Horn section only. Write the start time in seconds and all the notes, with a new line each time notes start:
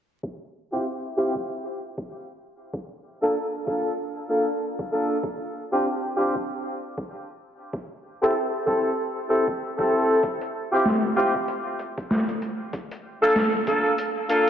0.73 C4 E4 F4 G4
1.17 C4 E4 F4 G4
3.23 A#3 D4 F4 A4
3.67 A#3 D4 F4 A4
4.30 A#3 D4 F4 A4
4.92 A#3 D4 F4 A4
5.73 C4 D4 F4 G4
6.17 C4 D4 F4 G4
8.23 C4 E4 G4 A4
8.67 C4 E4 G4 A4
9.29 C4 E4 G4 A4
9.79 C4 E4 G4 A4
10.72 C4 E4 F4 G4
11.17 C4 E4 F4 G4
13.23 A#3 D4 F4 A4
13.67 A#3 D4 F4 A4
14.29 A#3 D4 F4 A4